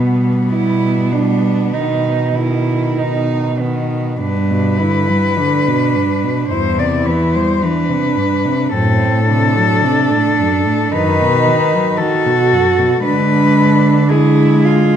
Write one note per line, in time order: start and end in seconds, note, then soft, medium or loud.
0.00 0.37 B2 medium
0.00 1.10 G3 medium
0.00 0.36 B3 medium
0.00 3.56 B3 medium
0.51 1.59 B2 medium
0.51 1.14 E4 medium
1.12 1.73 G3 medium
1.12 1.75 D4 medium
1.73 2.83 B2 medium
1.73 2.35 D#3 soft
1.73 2.36 D#4 medium
2.35 3.58 D#3 medium
2.35 2.99 E4 medium
2.97 4.06 B2 medium
2.97 3.62 D#4 medium
3.60 4.19 D#3 soft
3.60 4.20 B3 medium
4.20 5.17 G2 medium
4.20 4.52 G2 medium
4.20 4.81 D4 medium
4.20 6.46 B4 medium
4.51 4.81 B2 soft
4.79 5.11 D3 soft
4.79 5.39 E4 medium
5.09 5.40 G3 medium
5.37 5.69 D3 medium
5.37 6.52 D4 medium
5.68 5.97 B2 medium
5.95 6.25 G2 medium
6.24 6.49 B2 medium
6.50 7.43 E2 medium
6.50 6.79 G2 medium
6.50 7.63 E4 medium
6.50 6.80 C5 medium
6.78 7.07 C3 medium
6.78 7.08 D5 medium
7.06 7.36 E3 medium
7.06 7.36 B4 medium
7.34 7.63 G3 medium
7.34 7.64 C5 medium
7.62 7.91 E3 medium
7.62 8.75 D4 medium
7.62 8.72 B4 medium
7.89 8.19 C3 medium
8.17 8.47 G2 soft
8.45 8.73 C3 medium
8.73 9.03 F#2 medium
8.73 9.65 A2 medium
8.73 9.27 C4 medium
8.73 10.93 A4 loud
9.02 9.31 A2 medium
9.28 9.58 C3 medium
9.28 10.93 D4 medium
9.57 9.85 F#3 medium
9.84 10.12 C3 medium
10.11 10.41 A2 medium
10.39 10.68 F#2 medium
10.66 10.93 A2 medium
10.92 11.23 F#2 medium
10.92 11.81 D#3 medium
10.92 12.01 D#4 medium
10.92 11.99 B4 loud
11.21 11.49 B2 medium
11.47 11.75 D#3 medium
11.74 12.01 F#3 medium
11.98 12.28 D#3 medium
11.98 13.04 F#4 medium
11.98 13.03 A4 loud
12.26 12.54 B2 medium
12.52 12.80 F#2 medium
12.78 13.04 B2 medium
13.04 14.96 D3 medium
13.04 14.06 G#3 medium
13.04 14.12 D4 medium
13.04 14.11 B4 loud
14.09 14.96 G#3 medium
14.09 14.66 E4 medium
14.09 14.96 G#4 medium
14.65 14.96 F4 medium